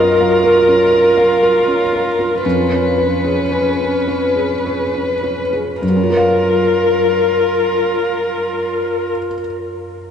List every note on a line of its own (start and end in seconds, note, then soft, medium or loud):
0.00 2.40 F#2 soft
0.00 0.11 C#4 soft
0.00 2.46 F4 medium
0.00 0.42 F#4 medium
0.00 0.34 A#4 soft
0.00 0.66 A#4 soft
0.00 2.43 A#4 medium
0.00 2.28 F#5 soft
0.20 1.15 C#5 soft
0.20 0.58 F5 soft
0.43 1.40 F#4 soft
0.43 0.83 A#4 soft
0.67 1.07 C#4 soft
0.67 0.91 A#4 soft
0.92 1.32 A#4 soft
0.92 1.66 A#4 soft
1.16 5.06 C#5 soft
1.16 1.57 F5 soft
1.41 2.48 F#4 soft
1.41 1.83 A#4 soft
1.67 2.08 C#4 soft
1.67 1.91 A#4 soft
1.92 2.17 A#4 soft
1.92 2.34 A#4 soft
2.18 2.44 F4 soft
2.18 2.48 A#4 soft
2.43 5.79 F2 soft
2.43 3.50 C#4 soft
2.43 5.57 C#4 soft
2.43 5.52 B4 soft
2.71 3.13 C#4 soft
2.97 3.78 F4 soft
2.97 3.41 B4 soft
3.24 4.35 G#4 soft
3.24 3.69 G#4 soft
3.51 4.63 C#4 soft
3.51 3.96 B4 soft
3.80 4.25 C#4 soft
3.80 4.06 F4 soft
4.07 4.93 F4 soft
4.07 4.53 B4 soft
4.36 5.87 G#4 soft
4.36 4.82 G#4 soft
4.65 8.55 C#4 soft
4.65 5.12 B4 soft
4.94 5.41 C#4 soft
4.94 5.22 F4 soft
5.23 5.52 F4 soft
5.23 5.71 B4 soft
5.53 9.39 F4 soft
5.53 5.82 G#4 soft
5.82 9.11 F#2 soft
5.82 9.12 F4 soft
5.82 9.12 A#4 soft
5.89 9.19 F#3 soft
5.96 9.26 C#4 soft
6.03 9.33 F4 soft
6.10 9.40 A#4 soft
6.17 9.47 F5 soft